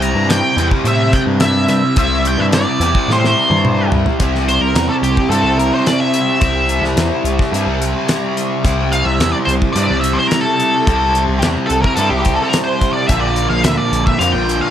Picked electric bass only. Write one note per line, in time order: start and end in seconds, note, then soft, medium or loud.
0.00 0.13 C2 medium
0.15 0.41 G2 medium
0.57 0.70 E2 medium
0.84 1.11 A2 medium
1.26 1.66 G2 medium
1.68 1.82 G2 medium
1.96 2.36 C2 medium
2.38 2.64 G2 medium
2.80 2.93 E2 loud
3.08 3.34 A2 medium
3.50 3.89 G2 medium
3.92 4.04 G2 medium
4.19 4.58 C2 medium
4.61 4.74 C2 medium
4.75 4.88 E2 medium
5.02 5.15 C2 medium
5.29 5.42 G2 medium
5.43 5.70 C2 medium
6.41 6.81 C2 medium
6.81 6.95 C2 medium
6.96 7.10 E2 medium
7.24 7.38 C2 medium
7.52 7.66 G2 medium
7.66 7.93 C2 medium
8.64 9.03 C2 medium
9.05 9.19 C2 medium
9.19 9.33 E2 medium
9.47 9.60 C2 medium
9.75 9.88 G2 medium
9.90 10.16 C2 medium
10.87 11.26 C2 medium
11.28 11.41 C2 medium
11.42 11.55 E2 medium
11.70 11.83 C2 medium
11.97 12.10 G2 medium
12.10 12.37 C2 medium
13.09 13.48 A#1 medium
13.50 13.63 A#1 medium
13.64 13.77 D2 medium
13.92 14.05 A#1 medium
14.20 14.33 F2 medium
14.33 14.60 A#1 medium